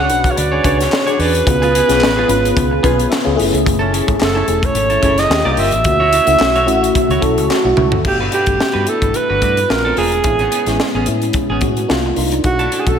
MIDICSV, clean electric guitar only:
0, 0, Header, 1, 3, 480
1, 0, Start_track
1, 0, Tempo, 548948
1, 1279, Time_signature, 4, 2, 24, 8
1, 11358, End_track
2, 0, Start_track
2, 0, Title_t, "Clean electric guitar"
2, 0, Program_c, 0, 27
2, 452, Note_on_c, 0, 73, 64
2, 458, Note_on_c, 0, 68, 59
2, 467, Note_on_c, 0, 62, 52
2, 544, Note_off_c, 0, 62, 0
2, 544, Note_off_c, 0, 73, 0
2, 548, Note_off_c, 0, 68, 0
2, 555, Note_on_c, 0, 62, 86
2, 563, Note_on_c, 0, 68, 90
2, 573, Note_on_c, 0, 73, 85
2, 682, Note_off_c, 0, 73, 0
2, 691, Note_off_c, 0, 68, 0
2, 697, Note_off_c, 0, 62, 0
2, 932, Note_on_c, 0, 73, 87
2, 943, Note_on_c, 0, 68, 76
2, 949, Note_on_c, 0, 62, 67
2, 1038, Note_off_c, 0, 62, 0
2, 1049, Note_off_c, 0, 68, 0
2, 1049, Note_on_c, 0, 62, 68
2, 1053, Note_off_c, 0, 73, 0
2, 1059, Note_on_c, 0, 68, 69
2, 1065, Note_on_c, 0, 74, 71
2, 1155, Note_off_c, 0, 62, 0
2, 1160, Note_off_c, 0, 68, 0
2, 1163, Note_off_c, 0, 74, 0
2, 1415, Note_on_c, 0, 68, 83
2, 1427, Note_on_c, 0, 65, 83
2, 1430, Note_on_c, 0, 59, 71
2, 1512, Note_off_c, 0, 59, 0
2, 1520, Note_off_c, 0, 65, 0
2, 1522, Note_on_c, 0, 59, 67
2, 1530, Note_on_c, 0, 65, 65
2, 1531, Note_off_c, 0, 68, 0
2, 1541, Note_on_c, 0, 68, 80
2, 1632, Note_off_c, 0, 59, 0
2, 1636, Note_off_c, 0, 65, 0
2, 1641, Note_off_c, 0, 68, 0
2, 1897, Note_on_c, 0, 68, 84
2, 1910, Note_on_c, 0, 65, 79
2, 1914, Note_on_c, 0, 59, 71
2, 1998, Note_off_c, 0, 59, 0
2, 2003, Note_off_c, 0, 65, 0
2, 2010, Note_off_c, 0, 68, 0
2, 2476, Note_on_c, 0, 59, 90
2, 2487, Note_on_c, 0, 65, 85
2, 2493, Note_on_c, 0, 68, 100
2, 2598, Note_off_c, 0, 68, 0
2, 2612, Note_off_c, 0, 65, 0
2, 2618, Note_off_c, 0, 59, 0
2, 3315, Note_on_c, 0, 69, 87
2, 3327, Note_on_c, 0, 64, 72
2, 3334, Note_on_c, 0, 61, 76
2, 3419, Note_off_c, 0, 61, 0
2, 3429, Note_off_c, 0, 64, 0
2, 3430, Note_on_c, 0, 61, 66
2, 3434, Note_off_c, 0, 69, 0
2, 3440, Note_on_c, 0, 64, 64
2, 3445, Note_on_c, 0, 69, 65
2, 3545, Note_off_c, 0, 61, 0
2, 3549, Note_off_c, 0, 69, 0
2, 3551, Note_off_c, 0, 64, 0
2, 3803, Note_on_c, 0, 69, 85
2, 3811, Note_on_c, 0, 64, 69
2, 3818, Note_on_c, 0, 61, 67
2, 3906, Note_off_c, 0, 61, 0
2, 3910, Note_off_c, 0, 64, 0
2, 3916, Note_off_c, 0, 69, 0
2, 4283, Note_on_c, 0, 69, 69
2, 4291, Note_on_c, 0, 64, 61
2, 4301, Note_on_c, 0, 61, 58
2, 4381, Note_off_c, 0, 61, 0
2, 4381, Note_off_c, 0, 69, 0
2, 4385, Note_off_c, 0, 64, 0
2, 4391, Note_on_c, 0, 61, 90
2, 4400, Note_on_c, 0, 64, 89
2, 4408, Note_on_c, 0, 69, 93
2, 4517, Note_off_c, 0, 69, 0
2, 4529, Note_off_c, 0, 64, 0
2, 4535, Note_off_c, 0, 61, 0
2, 4767, Note_on_c, 0, 74, 90
2, 4777, Note_on_c, 0, 67, 76
2, 4782, Note_on_c, 0, 65, 73
2, 4868, Note_off_c, 0, 65, 0
2, 4875, Note_off_c, 0, 67, 0
2, 4879, Note_on_c, 0, 65, 63
2, 4886, Note_on_c, 0, 67, 71
2, 4890, Note_off_c, 0, 74, 0
2, 4895, Note_on_c, 0, 75, 76
2, 4990, Note_off_c, 0, 65, 0
2, 4993, Note_off_c, 0, 67, 0
2, 4998, Note_off_c, 0, 75, 0
2, 5246, Note_on_c, 0, 73, 71
2, 5250, Note_on_c, 0, 66, 69
2, 5260, Note_on_c, 0, 64, 65
2, 5351, Note_off_c, 0, 64, 0
2, 5359, Note_off_c, 0, 66, 0
2, 5362, Note_on_c, 0, 64, 70
2, 5364, Note_off_c, 0, 73, 0
2, 5369, Note_on_c, 0, 66, 73
2, 5374, Note_on_c, 0, 73, 70
2, 5471, Note_off_c, 0, 64, 0
2, 5473, Note_off_c, 0, 73, 0
2, 5475, Note_off_c, 0, 66, 0
2, 5733, Note_on_c, 0, 73, 82
2, 5741, Note_on_c, 0, 66, 74
2, 5754, Note_on_c, 0, 64, 64
2, 5832, Note_off_c, 0, 64, 0
2, 5839, Note_off_c, 0, 66, 0
2, 5845, Note_off_c, 0, 73, 0
2, 6215, Note_on_c, 0, 73, 73
2, 6223, Note_on_c, 0, 66, 66
2, 6229, Note_on_c, 0, 64, 65
2, 6313, Note_off_c, 0, 64, 0
2, 6319, Note_off_c, 0, 66, 0
2, 6325, Note_off_c, 0, 73, 0
2, 7175, Note_on_c, 0, 71, 68
2, 7183, Note_on_c, 0, 66, 59
2, 7192, Note_on_c, 0, 62, 53
2, 7268, Note_off_c, 0, 62, 0
2, 7276, Note_off_c, 0, 66, 0
2, 7278, Note_on_c, 0, 62, 67
2, 7287, Note_on_c, 0, 66, 53
2, 7288, Note_off_c, 0, 71, 0
2, 7299, Note_on_c, 0, 71, 70
2, 7389, Note_off_c, 0, 62, 0
2, 7394, Note_off_c, 0, 66, 0
2, 7400, Note_off_c, 0, 71, 0
2, 7638, Note_on_c, 0, 71, 82
2, 7648, Note_on_c, 0, 66, 66
2, 7657, Note_on_c, 0, 62, 61
2, 7741, Note_off_c, 0, 62, 0
2, 7746, Note_off_c, 0, 66, 0
2, 7753, Note_off_c, 0, 71, 0
2, 8129, Note_on_c, 0, 71, 55
2, 8135, Note_on_c, 0, 66, 49
2, 8145, Note_on_c, 0, 62, 42
2, 8224, Note_off_c, 0, 71, 0
2, 8226, Note_off_c, 0, 66, 0
2, 8231, Note_off_c, 0, 62, 0
2, 8244, Note_on_c, 0, 62, 79
2, 8251, Note_on_c, 0, 66, 82
2, 8259, Note_on_c, 0, 71, 88
2, 8367, Note_off_c, 0, 71, 0
2, 8380, Note_off_c, 0, 66, 0
2, 8382, Note_off_c, 0, 62, 0
2, 8611, Note_on_c, 0, 69, 72
2, 8620, Note_on_c, 0, 62, 61
2, 8625, Note_on_c, 0, 60, 60
2, 8712, Note_off_c, 0, 60, 0
2, 8720, Note_off_c, 0, 62, 0
2, 8723, Note_on_c, 0, 60, 55
2, 8730, Note_on_c, 0, 62, 63
2, 8733, Note_off_c, 0, 69, 0
2, 8742, Note_on_c, 0, 70, 62
2, 8832, Note_off_c, 0, 60, 0
2, 8836, Note_off_c, 0, 62, 0
2, 8842, Note_off_c, 0, 70, 0
2, 9091, Note_on_c, 0, 68, 64
2, 9099, Note_on_c, 0, 61, 63
2, 9108, Note_on_c, 0, 59, 54
2, 9193, Note_off_c, 0, 59, 0
2, 9204, Note_off_c, 0, 61, 0
2, 9204, Note_on_c, 0, 59, 56
2, 9210, Note_off_c, 0, 68, 0
2, 9215, Note_on_c, 0, 61, 58
2, 9220, Note_on_c, 0, 68, 64
2, 9313, Note_off_c, 0, 59, 0
2, 9319, Note_off_c, 0, 61, 0
2, 9322, Note_off_c, 0, 68, 0
2, 9576, Note_on_c, 0, 68, 75
2, 9582, Note_on_c, 0, 61, 69
2, 9590, Note_on_c, 0, 59, 57
2, 9677, Note_off_c, 0, 59, 0
2, 9684, Note_off_c, 0, 61, 0
2, 9690, Note_off_c, 0, 68, 0
2, 10054, Note_on_c, 0, 68, 76
2, 10067, Note_on_c, 0, 61, 68
2, 10072, Note_on_c, 0, 59, 61
2, 10152, Note_off_c, 0, 59, 0
2, 10162, Note_off_c, 0, 61, 0
2, 10164, Note_off_c, 0, 68, 0
2, 11010, Note_on_c, 0, 69, 92
2, 11017, Note_on_c, 0, 64, 75
2, 11023, Note_on_c, 0, 62, 68
2, 11109, Note_off_c, 0, 62, 0
2, 11116, Note_off_c, 0, 64, 0
2, 11120, Note_on_c, 0, 62, 61
2, 11125, Note_off_c, 0, 69, 0
2, 11127, Note_on_c, 0, 64, 61
2, 11135, Note_on_c, 0, 69, 66
2, 11232, Note_off_c, 0, 62, 0
2, 11236, Note_off_c, 0, 64, 0
2, 11240, Note_off_c, 0, 69, 0
2, 11358, End_track
3, 0, Start_track
3, 0, Title_t, "Muted clean electric guitar strokes"
3, 78, Note_on_c, 9, 29, 43
3, 166, Note_off_c, 9, 29, 0
3, 217, Note_on_c, 9, 29, 59
3, 304, Note_off_c, 9, 29, 0
3, 320, Note_on_c, 9, 29, 46
3, 407, Note_off_c, 9, 29, 0
3, 692, Note_on_c, 9, 29, 45
3, 780, Note_off_c, 9, 29, 0
3, 810, Note_on_c, 9, 29, 38
3, 898, Note_off_c, 9, 29, 0
3, 1183, Note_on_c, 9, 29, 54
3, 1270, Note_off_c, 9, 29, 0
3, 1290, Note_on_c, 9, 29, 43
3, 1378, Note_off_c, 9, 29, 0
3, 1661, Note_on_c, 9, 29, 58
3, 1749, Note_off_c, 9, 29, 0
3, 1776, Note_on_c, 9, 29, 43
3, 1863, Note_off_c, 9, 29, 0
3, 2009, Note_on_c, 9, 29, 38
3, 2096, Note_off_c, 9, 29, 0
3, 2143, Note_on_c, 9, 29, 58
3, 2231, Note_off_c, 9, 29, 0
3, 2246, Note_on_c, 9, 29, 50
3, 2334, Note_off_c, 9, 29, 0
3, 2373, Note_on_c, 9, 29, 47
3, 2460, Note_off_c, 9, 29, 0
3, 2609, Note_on_c, 9, 29, 56
3, 2696, Note_off_c, 9, 29, 0
3, 2717, Note_on_c, 9, 29, 36
3, 2805, Note_off_c, 9, 29, 0
3, 2845, Note_on_c, 9, 29, 48
3, 2932, Note_off_c, 9, 29, 0
3, 3084, Note_on_c, 9, 29, 51
3, 3172, Note_off_c, 9, 29, 0
3, 3198, Note_on_c, 9, 29, 43
3, 3286, Note_off_c, 9, 29, 0
3, 3560, Note_on_c, 9, 29, 54
3, 3647, Note_off_c, 9, 29, 0
3, 3667, Note_on_c, 9, 29, 47
3, 3754, Note_off_c, 9, 29, 0
3, 3917, Note_on_c, 9, 29, 42
3, 4004, Note_off_c, 9, 29, 0
3, 4045, Note_on_c, 9, 29, 52
3, 4133, Note_off_c, 9, 29, 0
3, 4155, Note_on_c, 9, 29, 40
3, 4242, Note_off_c, 9, 29, 0
3, 4527, Note_on_c, 9, 29, 47
3, 4614, Note_off_c, 9, 29, 0
3, 4634, Note_on_c, 9, 29, 41
3, 4722, Note_off_c, 9, 29, 0
3, 5012, Note_on_c, 9, 29, 57
3, 5099, Note_off_c, 9, 29, 0
3, 5119, Note_on_c, 9, 29, 39
3, 5207, Note_off_c, 9, 29, 0
3, 5483, Note_on_c, 9, 29, 44
3, 5571, Note_off_c, 9, 29, 0
3, 5604, Note_on_c, 9, 29, 46
3, 5692, Note_off_c, 9, 29, 0
3, 5843, Note_on_c, 9, 29, 39
3, 5930, Note_off_c, 9, 29, 0
3, 5974, Note_on_c, 9, 29, 47
3, 6061, Note_off_c, 9, 29, 0
3, 6081, Note_on_c, 9, 29, 43
3, 6168, Note_off_c, 9, 29, 0
3, 6323, Note_on_c, 9, 29, 47
3, 6411, Note_off_c, 9, 29, 0
3, 6455, Note_on_c, 9, 29, 48
3, 6543, Note_off_c, 9, 29, 0
3, 6565, Note_on_c, 9, 29, 38
3, 6652, Note_off_c, 9, 29, 0
3, 6693, Note_on_c, 9, 29, 54
3, 6780, Note_off_c, 9, 29, 0
3, 6939, Note_on_c, 9, 29, 35
3, 7027, Note_off_c, 9, 29, 0
3, 7045, Note_on_c, 9, 29, 39
3, 7133, Note_off_c, 9, 29, 0
3, 7409, Note_on_c, 9, 29, 45
3, 7496, Note_off_c, 9, 29, 0
3, 7524, Note_on_c, 9, 29, 39
3, 7611, Note_off_c, 9, 29, 0
3, 7751, Note_on_c, 9, 29, 40
3, 7839, Note_off_c, 9, 29, 0
3, 7885, Note_on_c, 9, 29, 54
3, 7973, Note_off_c, 9, 29, 0
3, 8004, Note_on_c, 9, 29, 39
3, 8091, Note_off_c, 9, 29, 0
3, 8378, Note_on_c, 9, 29, 44
3, 8465, Note_off_c, 9, 29, 0
3, 8483, Note_on_c, 9, 29, 33
3, 8571, Note_off_c, 9, 29, 0
3, 8864, Note_on_c, 9, 29, 45
3, 8952, Note_off_c, 9, 29, 0
3, 8968, Note_on_c, 9, 29, 39
3, 9056, Note_off_c, 9, 29, 0
3, 9335, Note_on_c, 9, 29, 36
3, 9422, Note_off_c, 9, 29, 0
3, 9450, Note_on_c, 9, 29, 39
3, 9538, Note_off_c, 9, 29, 0
3, 9688, Note_on_c, 9, 29, 33
3, 9775, Note_off_c, 9, 29, 0
3, 9823, Note_on_c, 9, 29, 48
3, 9910, Note_off_c, 9, 29, 0
3, 9924, Note_on_c, 9, 29, 40
3, 10012, Note_off_c, 9, 29, 0
3, 10163, Note_on_c, 9, 29, 33
3, 10250, Note_off_c, 9, 29, 0
3, 10300, Note_on_c, 9, 29, 43
3, 10387, Note_off_c, 9, 29, 0
3, 10412, Note_on_c, 9, 29, 31
3, 10499, Note_off_c, 9, 29, 0
3, 10544, Note_on_c, 9, 29, 48
3, 10632, Note_off_c, 9, 29, 0
3, 10777, Note_on_c, 9, 29, 44
3, 10865, Note_off_c, 9, 29, 0
3, 10884, Note_on_c, 9, 29, 39
3, 10971, Note_off_c, 9, 29, 0
3, 11256, Note_on_c, 9, 29, 43
3, 11344, Note_off_c, 9, 29, 0
3, 11358, End_track
0, 0, End_of_file